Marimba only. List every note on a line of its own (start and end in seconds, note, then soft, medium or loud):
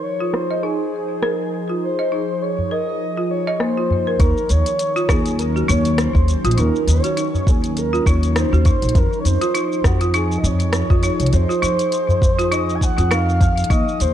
0.20 0.33 F4 medium
0.51 0.58 D#5 medium
0.63 0.79 D#4 medium
1.23 1.39 A#4 medium
1.69 1.82 F4 medium
1.99 2.06 D#5 medium
2.12 2.28 D#4 medium
2.71 2.87 A#4 medium
3.17 3.30 F4 medium
3.47 3.55 D#5 medium
3.61 3.70 A#3 medium
3.77 3.90 F4 medium
4.07 4.19 A#4 medium
4.20 4.36 D#4 loud
4.96 5.08 F4 loud
5.09 5.19 D#4 loud
5.56 5.63 F#4 medium
5.68 5.84 D#4 medium
6.45 6.56 F4 loud
6.58 6.67 D#4 loud
7.04 7.11 F#4 medium
7.17 7.33 D#4 loud
7.93 8.05 F4 loud
8.07 8.16 D#4 loud
8.53 8.60 F#4 medium
8.66 8.82 D#4 loud
9.41 9.53 F4 loud
9.54 9.64 D#4 loud
10.01 10.08 F4 medium
10.14 10.30 D#4 loud
10.90 11.02 F4 loud
11.03 11.13 D#4 medium
11.49 11.57 F4 medium
11.62 11.78 D#4 loud
12.39 12.50 F4 loud
12.52 12.61 D#4 loud
12.98 13.05 F4 medium
13.11 13.27 D#4 loud
13.70 13.86 D#4 loud